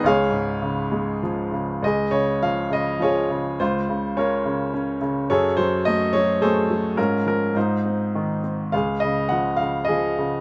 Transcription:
<<
  \new Staff \with { instrumentName = "Grand piano" } { \time 3/4 \key cis \mixolydian \tempo 4 = 104 << { eis''2 r4 | \key des \major ees''8 cis''8 eis''8 ees''8 cis''4 | c''4 des''4. r8 | des''8 c''8 ees''8 des''8 c''4 |
bes'8 bes'8 c''4. r8 | f''8 ees''8 ges''8 f''8 ees''4 | } \\ { <gis' cis''>2 r4 | gis'4. r8 <eis' gis'>4 | f'4 <f' bes'>4. r8 | <aes' a'>4. r8 <aes' a'>4 |
<des' f'>4 <ees' f'>4. r8 | aes'4. r8 aes'4 | } >> }
  \new Staff \with { instrumentName = "Grand piano" } { \clef bass \time 3/4 \key cis \mixolydian cis,8 gis,8 cis8 gis8 eis8 cis8 | \key des \major cis,8 cis8 eis8 cis8 eis8 cis8 | des,8 des8 des'8 des8 des'8 des8 | ges,8 ges8 a8 ges8 a8 ges8 |
aes,8 f8 aes,8 c'8 ees8 c'8 | des,8 des8 f8 des8 f8 des8 | }
>>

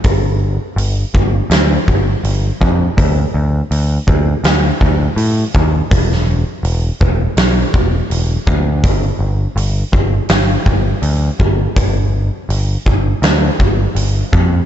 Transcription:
<<
  \new Staff \with { instrumentName = "Picked electric bass" } { \clef bass \time 4/4 \key g \mixolydian \tempo 4 = 82 g,,4 g,,8 g,,8 d,8 g,,8 g,,8 f,8 | d,8 d,8 d,8 d,8 d,8 d,8 a,8 ees,8 | e,,4 e,,8 e,,8 b,,8 e,,8 e,,8 d,8 | g,,8 g,,8 g,,8 g,,8 g,,8 g,,8 d,8 g,,8 |
g,,4 g,,8 g,,8 d,8 g,,8 g,,8 f,8 | }
  \new DrumStaff \with { instrumentName = "Drums" } \drummode { \time 4/4 <hho bd>4 hho8 bd8 <hho sn>8 bd8 hho8 bd8 | <hho bd>4 hho8 bd8 <hho sn>8 bd8 hho8 bd8 | <hho bd>16 sn8. hho8 bd8 <hho sn>8 bd8 hho8 bd8 | <hho bd>4 hho8 bd8 <hho sn>8 bd8 hho8 bd8 |
<hho bd>4 hho8 bd8 <hho sn>8 bd8 hho8 bd8 | }
>>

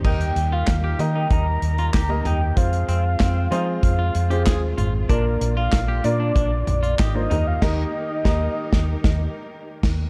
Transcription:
<<
  \new Staff \with { instrumentName = "Soft synth lead" } { \time 4/4 \key ees \major \tempo 4 = 95 g''8. f''8. g''8 bes''4. g''8 | f''2 f''4. r8 | bes'8. f''8. d''4. ees''8. f''16 | ees''2. r4 | }
  \new Staff \with { instrumentName = "Clean electric guitar" } { \time 4/4 \key ees \major ees'16 r8 f'16 r16 g'16 r16 ees'16 ees'16 r8 f'16 g'16 r16 ees'16 r16 | r8 c'16 r16 c'8 ees'16 r8 f'16 r16 g'16 aes'16 r16 f'16 r16 | d'16 r8 f'16 r16 g'16 r16 d'16 d'16 r8 f'16 g'16 r16 ees'16 r16 | r1 | }
  \new Staff \with { instrumentName = "Grand piano" } { \time 4/4 \key ees \major <bes ees' g' bes' ees''>4~ <bes ees' g' bes' ees''>16 r16 <bes ees' g' bes' ees''>4. r16 <bes ees' g' bes' ees''>8. | <aes c' f' aes' c''>4~ <aes c' f' aes' c''>16 r16 <aes c' f' aes' c''>4 r16 <aes c' f' aes' c''>4 r16 | <bes d' f' bes' d''>4~ <bes d' f' bes' d''>16 r16 <bes d' f' bes' d''>4. r16 <bes d' f' bes' c''>16 <bes ees' g' bes' ees''>8 | <ees bes ees' g' bes' ees''>8 r8 <bes ees' g' bes' ees''>8 r2 r8 | }
  \new Staff \with { instrumentName = "Grand piano" } { \clef bass \time 4/4 \key ees \major ees4. r2 r8 | r1 | bes,4. r2 ees8 | r1 | }
  \new Staff \with { instrumentName = "String section" } { \time 4/4 \key ees \major << { <g g' bes'>1 | f'1~ | f'2.~ f'8 <ees bes'>8~ | <ees bes'>1 | } \\ { ees'1 | <aes c'>1 | <d bes>2.~ <d bes>8 <ees' g'>8~ | <ees' g'>1 | } >> }
  \new Staff \with { instrumentName = "Fingered electric bass" } { \clef bass \time 4/4 \key ees \major ees,8 ees,8 ees,8 ees8 ees,8 ees,8 d,8 ees,8 | f,8 f,8 f,8 f8 f,8 f,8 ees,8 aes,,8 | bes,,8 bes,,8 bes,,8 bes,8 bes,,8 bes,,8 aes,,8 ees,8 | ees,8 r8 ees,8 r16 ees,8 ees,8 r8. ees,8 | }
  \new DrumStaff \with { instrumentName = "Drums" } \drummode { \time 4/4 <cymc bd>16 hh16 hh8 <hc hh bd sn>8 hh8 <hh bd>8 hh16 hh16 <hc hh bd sn>8 <hh tomfh>8 | <hh bd>16 hh16 hh8 <hc hh bd sn>8 hh8 <hh bd>8 hh16 hh16 <hc hh bd sn>8 <hh tomfh>8 | <hh bd>8 hh8 <hc hh bd sn>8 hh8 <hh bd>8 <hh tomfh>16 hh16 <hc hh bd sn>8 <hh tomfh>8 | <cymc bd sn>4 <bd sn>8. <bd sn>16 r16 <bd sn>8. r8 <cymc bd sn>8 | }
>>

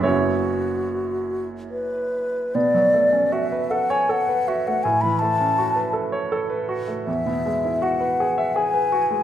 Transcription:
<<
  \new Staff \with { instrumentName = "Flute" } { \time 3/4 \key b \dorian \tempo 4 = 79 fis'2 b'4 | d''4 e''8 fis''16 gis''16 fis''8 e''16 fis''16 | gis''16 b''16 a''4 r4. | e''4 fis''4 gis''4 | }
  \new Staff \with { instrumentName = "Grand piano" } { \time 3/4 \key b \dorian << { <cis' cis''>2~ <cis' cis''>8 r8 | r2. | r2. | r2. | } \\ { <fis,, fis, fis b e'>2. | b,16 fis16 a16 cis'16 fis'16 b'16 a'16 cis''16 a'16 b'16 fis'16 a16 | a,16 e16 a16 cis'16 fis'16 b'16 a'16 cis''16 a'16 b'16 fis'16 a16 | e,16 b,16 gis16 e'16 fis'16 b'16 gis'16 e''16 gis'16 b'16 fis'16 gis16 | } >> }
>>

